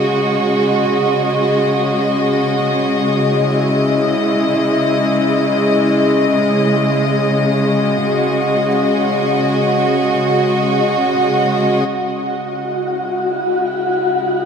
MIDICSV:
0, 0, Header, 1, 3, 480
1, 0, Start_track
1, 0, Key_signature, 4, "minor"
1, 0, Tempo, 500000
1, 13874, End_track
2, 0, Start_track
2, 0, Title_t, "Synth texture"
2, 0, Program_c, 0, 99
2, 11424, Note_on_c, 0, 78, 82
2, 11433, Note_on_c, 0, 66, 91
2, 13874, Note_off_c, 0, 66, 0
2, 13874, Note_off_c, 0, 78, 0
2, 13874, End_track
3, 0, Start_track
3, 0, Title_t, "String section"
3, 0, Program_c, 1, 48
3, 0, Note_on_c, 1, 49, 62
3, 0, Note_on_c, 1, 56, 55
3, 0, Note_on_c, 1, 66, 68
3, 0, Note_on_c, 1, 75, 60
3, 3187, Note_on_c, 1, 64, 53
3, 3535, Note_off_c, 1, 66, 0
3, 6861, Note_off_c, 1, 64, 0
3, 7486, Note_on_c, 1, 66, 64
3, 12106, Note_on_c, 1, 64, 53
3, 12154, Note_off_c, 1, 66, 0
3, 13874, Note_off_c, 1, 49, 0
3, 13874, Note_off_c, 1, 56, 0
3, 13874, Note_off_c, 1, 64, 0
3, 13874, Note_off_c, 1, 75, 0
3, 13874, End_track
0, 0, End_of_file